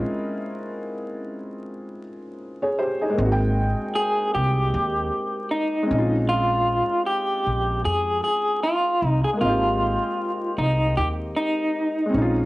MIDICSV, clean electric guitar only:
0, 0, Header, 1, 2, 480
1, 0, Start_track
1, 0, Tempo, 779221
1, 32, Time_signature, 4, 2, 24, 8
1, 7671, End_track
2, 0, Start_track
2, 0, Title_t, "Clean electric guitar"
2, 0, Program_c, 0, 27
2, 2436, Note_on_c, 0, 68, 85
2, 2657, Note_off_c, 0, 68, 0
2, 2677, Note_on_c, 0, 67, 89
2, 3395, Note_on_c, 0, 63, 72
2, 3416, Note_off_c, 0, 67, 0
2, 3849, Note_off_c, 0, 63, 0
2, 3873, Note_on_c, 0, 65, 87
2, 4328, Note_off_c, 0, 65, 0
2, 4352, Note_on_c, 0, 67, 81
2, 4834, Note_off_c, 0, 67, 0
2, 4836, Note_on_c, 0, 68, 94
2, 5057, Note_off_c, 0, 68, 0
2, 5075, Note_on_c, 0, 68, 87
2, 5297, Note_off_c, 0, 68, 0
2, 5319, Note_on_c, 0, 65, 82
2, 5590, Note_off_c, 0, 65, 0
2, 5590, Note_on_c, 0, 63, 82
2, 5668, Note_off_c, 0, 63, 0
2, 5694, Note_on_c, 0, 68, 83
2, 5725, Note_off_c, 0, 68, 0
2, 5796, Note_on_c, 0, 65, 93
2, 6520, Note_on_c, 0, 63, 85
2, 6535, Note_off_c, 0, 65, 0
2, 6740, Note_off_c, 0, 63, 0
2, 6759, Note_on_c, 0, 67, 105
2, 6822, Note_off_c, 0, 67, 0
2, 7001, Note_on_c, 0, 63, 88
2, 7671, Note_off_c, 0, 63, 0
2, 7671, End_track
0, 0, End_of_file